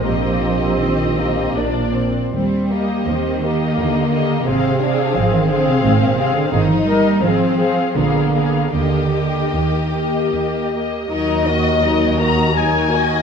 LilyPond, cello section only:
\new Staff \with { instrumentName = "Cello section" } { \clef bass \time 3/4 \key ees \major \tempo 4 = 83 f4 ees4 r4 | g4 ees4 d4 | c4 f16 ees16 d16 c16 aes,16 bes,16 c16 d16 | ees16 f16 g8 f4 d4 |
d4 ees4 r4 | \key ees \minor ees,2. | }